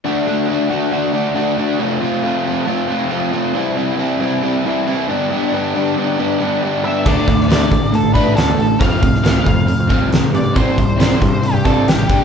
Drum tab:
CC |----------------|----------------|----------------|----------------|
HH |----------------|----------------|----------------|----------------|
SD |----------------|----------------|----------------|----------------|
BD |----------------|----------------|----------------|----------------|

CC |x---------------|----------------|----------------|
HH |--o-o-o-o-o-o-o-|o-o-o-o-o-o-o-o-|o-o-o-o-o-o-o-o-|
SD |---oo-------o---|---oo-------o---|----o-------o---|
BD |o-o---o---o-----|o-o---o---o-----|o-o---o---o---o-|